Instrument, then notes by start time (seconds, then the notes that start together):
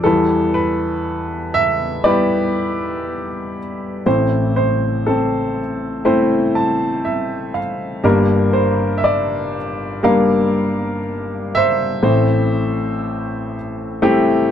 upright piano
0.04 E2 E3 G3 B3 E4 A4 B4
0.54 B4
1.54 E5
2.04 G3 B3 E4 G4 B4 D5
4.06 A1 A2 A3 C4 E4 C5
4.56 C5
5.06 C4 A4
6.05 A3 C4 E4 C5
6.55 A5
7.05 E5
7.54 F5
8.03 G1 G2 G3 A#3 D4 A#4
8.53 C5
8.98 E5
9.04 D5
10.03 G3 A#3 D4 A#4 F5
11.55 C5 E5
12.02 A1 A2 A3 C4 E4 C5
14.02 A3 C4 E4 G4